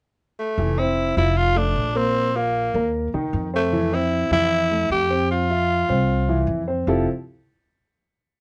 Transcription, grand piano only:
0.59 E3 E4
0.79 C4 C5
1.17 F3 F4
1.55 A3 A4
1.95 A#3 A#4
2.35 F4 F5
2.75 A#3 A#4
3.14 D#3 D#4
3.54 C4 C5
3.73 E3 E4
3.92 C4 C5
4.32 E3 E4
4.71 A3 A4
5.10 C4 C5
5.50 F4 E5
5.89 C4 C5
6.29 E3 E4
6.68 C4 C5
6.88 F3 C4 E4 F4 G4 A4

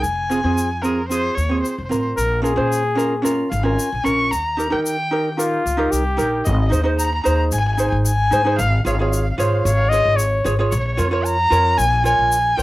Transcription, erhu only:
0.02 G#5
0.82 A#4
1.09 C5
1.35 C#5
1.62 C5
1.71 C5
1.79 C5
1.84 C5
1.92 C5
2.00 C5
3.50 F5
3.64 G#5
4.05 C#6
4.31 A#5
4.72 G5
4.84 G5
6.44 D#5
6.52 D#5
6.61 D#5
6.67 D#5
6.74 D#5
6.83 D#5
6.98 A#5
7.06 A#5
7.14 A#5
7.23 A#5
7.29 A#5
7.37 A#5
7.53 G#5
7.60 G#5
7.67 G#5
7.74 G#5
7.82 G#5
7.90 G#5
8.06 G#5
8.59 F5
8.86 F5
8.94 F5
9.01 F5
9.10 F5
9.16 F5
9.23 F5
9.32 F5
9.39 F5
9.46 F5
9.54 F5
9.60 F5
9.67 F5
9.74 F5
10.71 C#5
10.79 C#5
10.87 C#5
10.94 C#5
11.03 C#5
11.11 C#5
11.25 A#5
11.78 G#5
12.05 G#5
12.59 G5

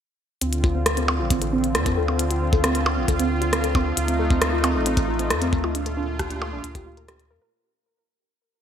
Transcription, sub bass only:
0.42 D2
1.20 A1
1.75 F2
1.97 D2
2.97 A1
3.08 D2
3.97 D2
4.75 A1
5.31 F2
5.53 D2
6.53 A1
6.64 D2
7.31 F2

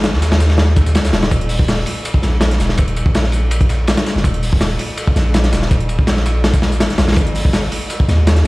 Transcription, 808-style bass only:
Already playing: G#1
0.13 D#2
0.95 C#2
1.13 D#1
1.31 D#1
2.23 A#1
2.60 D#1
3.06 A#1
4.16 F#1
4.24 D#1
5.16 A#1
5.52 D#1
5.99 A#1
6.80 G#1
6.99 A#1
7.17 G#1
8.08 D#2

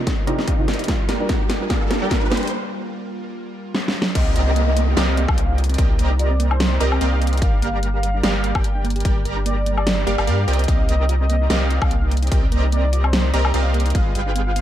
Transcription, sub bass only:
4.15 C2
4.36 C2
4.97 C2
5.28 C2
5.78 C2
5.99 C2
6.81 C2
7.01 C2
7.42 G1
7.62 G1
8.23 G1
8.55 G1
9.05 G1
9.25 G1
10.07 G1
10.18 G1
10.27 G2
10.48 C2
10.68 C2
10.89 C2
11.50 C2
11.82 C2
12.32 C2
12.52 C2
13.34 C2
13.54 C2
13.95 G1
14.15 G1

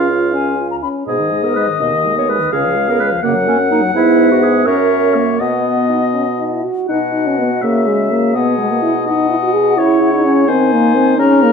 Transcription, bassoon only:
Already playing: C#2
1.07 G#2
1.80 D#2
2.52 C#2
3.23 F#2
3.95 G#2
4.67 F#2
5.40 B2
6.90 B2
7.63 C#3
8.34 B2
9.78 C#3
10.49 D#3
11.19 C#3

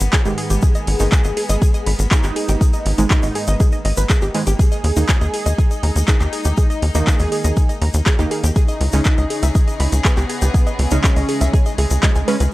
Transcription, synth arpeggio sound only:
0.13 G#4
0.25 G4
0.38 G#4
0.50 G4
0.63 G#4
0.75 D#5
1.00 D#4
1.25 D#5
1.37 G#4
1.49 D#5
1.62 G#4
1.74 D#5
1.87 B5
2.11 G#4
2.24 G4
2.36 G#4
2.49 G4
2.61 G#4
2.73 D#5
2.98 D#4
3.23 D#5
3.35 G#4
3.48 D#5
3.60 G#4
3.73 D#5
3.85 D#5
3.97 B4
4.10 G#4
4.22 G4
4.34 G#5
4.47 G4
4.59 G#4
4.72 D#5
4.97 D#4
5.21 D#5
5.34 G#4
5.46 D#5
5.58 G#4
5.71 D#5
5.83 A#5
6.08 G#4
6.20 G4
6.33 G#4
6.45 G4
6.58 G#4
6.70 D#5
6.95 D#4
7.20 D#5
7.32 G#4
7.44 D#5
7.57 G#4
7.69 D#5
7.82 A#5
8.06 G#4
8.19 G4
8.31 G#4
8.44 G4
8.56 G#4
8.68 D#5
8.93 D#4
9.18 D#5
9.30 G#4
9.43 E5
9.55 G#4
9.68 D#5
9.80 B5
10.05 G#4
10.17 G4
10.29 G#4
10.42 G4
10.54 G#4
10.67 D#5
10.92 D#4
11.16 D#5
11.29 G#4
11.41 E5
11.53 G#4
11.66 D#5
11.78 G#4
12.03 D#5
12.16 G#5
12.28 B4
12.40 B4

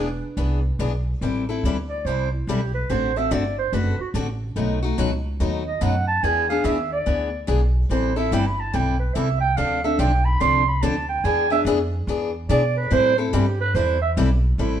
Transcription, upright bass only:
Already playing: E1
0.37 C2
0.79 B1
1.21 A1
1.63 D2
2.05 C2
2.47 B1
2.90 A1
3.31 G1
3.72 F#1
3.99 muted upright bass stroke
4.14 A1
4.56 B1
4.98 C#2
5.40 D#2
5.82 F#2
6.23 E2
6.64 D#2
7.07 D2
7.48 B1
7.89 A1
8.32 G1
8.74 B1
9.16 C2
9.58 D2
9.99 B1
10.41 C2
10.82 D2
11.24 E2
11.65 F2
12.07 E2
12.49 B2
12.91 A2
13.33 G2
13.74 E2
14.17 B1
14.58 A1

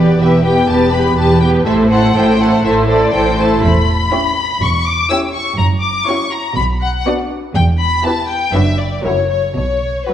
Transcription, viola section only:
Already playing: B3 G4
0.20 B3 G4
0.44 B3 G4
0.68 B3 G4
0.93 B3 G4
1.18 B3 G4
1.43 B3 G4
1.66 A3 E4
1.91 A3 E4
2.15 A3 E4
2.40 A3 E4
2.64 A3 E4
2.89 A3 E4
3.14 A3 E4
3.39 A3 E4
4.13 C#4 E4
5.11 C#4 E4
6.09 C#4 E4
7.07 B3 D4
8.04 B3 E4
8.54 F#3 D4
9.04 F#3 E4
10.07 F#3

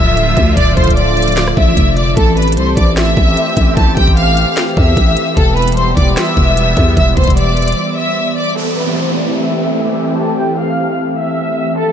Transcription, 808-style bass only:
Already playing: D1
0.37 D2
0.57 D1
0.77 D1
1.57 A1
1.77 F1
2.17 A1
2.57 C2
2.77 A1
3.17 A1
3.57 A1
3.77 A1
3.97 A1
4.77 E2
4.97 A1
5.37 E1
5.97 E1
6.37 E1
6.77 E2
6.97 E1
7.17 E1
7.27 E1

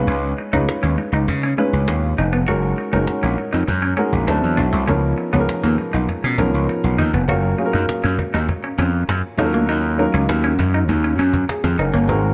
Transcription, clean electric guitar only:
0.08 C#4
0.38 muted clean electric guitar stroke
0.53 D#4
0.83 C#4
0.98 muted clean electric guitar stroke
1.14 D#4
1.29 muted clean electric guitar stroke
1.43 C#4
1.58 C#4
1.88 muted clean electric guitar stroke
2.18 D#4
2.33 B3
2.48 F#4
2.78 muted clean electric guitar stroke
2.93 D#4
3.23 C#4
3.38 muted clean electric guitar stroke
3.53 D#4
3.68 muted clean electric guitar stroke
3.82 C#4
3.97 C#4
4.27 muted clean electric guitar stroke
4.57 D4
4.73 A3
4.88 C#4
5.18 muted clean electric guitar stroke
5.33 B3
5.64 A#3
5.78 muted clean electric guitar stroke
5.93 D#4
6.09 muted clean electric guitar stroke
6.24 C#4
6.39 C#4
6.69 muted clean electric guitar stroke
6.98 D#4
7.14 B3
7.29 F#4
7.58 muted clean electric guitar stroke
7.73 D#4
8.04 C#4
8.19 muted clean electric guitar stroke
8.34 D#4
8.49 muted clean electric guitar stroke
8.64 C#4
8.79 C#4
9.09 muted clean electric guitar stroke
9.39 D#4
9.54 A#3
9.69 D#4
9.99 muted clean electric guitar stroke
10.14 C#4
10.44 C#4
10.60 muted clean electric guitar stroke
10.74 D#4
10.89 muted clean electric guitar stroke
11.04 C#4
11.19 C#4
11.49 muted clean electric guitar stroke
11.79 D#4
11.94 A#3
12.09 G#3

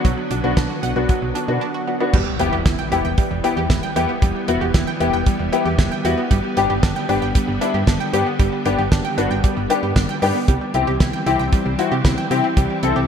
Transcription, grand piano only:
0.31 D4 F#4
0.44 B3 D4 F#4
0.83 D4 F#4
0.96 B3 D4 F#4
1.35 D4 F#4
1.48 B3 D4 F#4
1.88 D4 F#4
2.00 B3 D4 F#4
2.40 B3 E4 G4
2.92 B3 E4 G4
3.44 B3 E4 G4
3.96 B3 E4 G4
4.48 B3 E4 F#4
5.00 B3 E4 G4
5.53 B3 E4 G4
6.05 B3 E4 F#4
6.57 B3 D4 G4
7.09 B3 D4 G4
7.61 B3 D4 E4
8.13 B3 D4 G4
8.66 B3 D4 G4
9.18 B3 D4 F#4
9.70 B3 D4 G4
10.22 B3 D4 G4
10.74 C4 E4 G4
11.26 C4 E4 G4
11.79 C4 E4 F#4
12.31 C4 E4 G4
12.83 C4 E4 A4

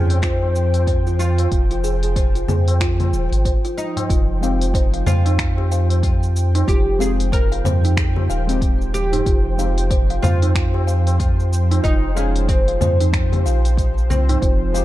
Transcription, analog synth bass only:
Already playing: F2
1.51 F1
2.48 F2
3.12 D#1
3.32 G#1
4.10 F1
5.06 F2
6.68 F1
7.64 F2
8.29 D#1
9.26 F1
10.23 F2
11.84 F1
12.81 F2
13.45 A#1
14.10 C2
14.42 F1

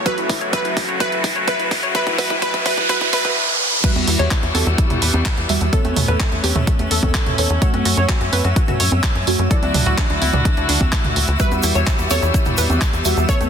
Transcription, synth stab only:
0.06 F#3 F#4 E5
0.53 F#3 F#4 E5
1.00 F#3 F#4 E5
1.48 F#3 F#4 E5
1.95 F#3 F#4 E5
2.18 F#3 F#4 E5
2.42 F#3 F#4 E5
2.66 F#3 F#4 E5
2.89 F#3 F#4 E5
3.13 F#3 F#4 E5
3.84 G3 F#4 E5
5.49 G3 F#4 E5
5.73 B3 A4 C#5
7.03 B3 A4 C#5
7.38 B3 A4 C#5
7.62 A3 F#4 C#5
9.27 A3 F#4 C#5
9.51 F#3 E4 D5
11.40 G3 F#4 E5
13.05 G3 F#4 E5
13.29 B3 A4 C#5

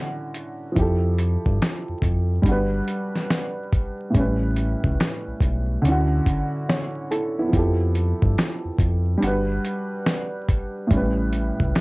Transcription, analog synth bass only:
0.77 F2
1.46 G2
1.89 F2
2.02 F2
2.44 G1
4.15 A1
4.84 C#2
5.27 B1
5.41 B1
5.84 D2
7.53 F2
8.23 G2
8.65 F2
8.79 F2
9.23 G1
10.91 A1
11.60 C#2

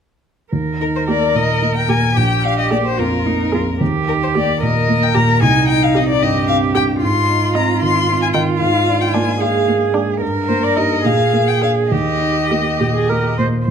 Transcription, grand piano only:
0.53 D#2
0.80 D#4
1.08 A#3
1.35 A#2
1.62 A#3
1.89 A#2
2.17 A#1
2.45 D4
2.71 A#3
2.99 F2
3.26 A#3
3.54 F2
3.81 D#2
4.08 D#4
4.36 A#3
4.62 A#2
4.89 A#3
5.16 A#2
5.42 C2
5.69 D#4
5.96 C4
6.22 G2
6.48 C4
6.75 G2
7.02 G#2
7.29 D#4
7.55 C4
7.82 D#3
8.08 C4
8.34 D#3
8.61 G#2
8.88 D4
9.15 A#3
9.42 G#3
9.68 A#3
9.95 G#3
10.21 G2
10.49 A#3
10.77 D#4 G4
11.05 A#2
11.33 A#3
11.63 D4 G#4
11.92 D#2
12.21 D#4
12.51 A#3
12.80 A#2
13.10 A#3
13.39 A#2

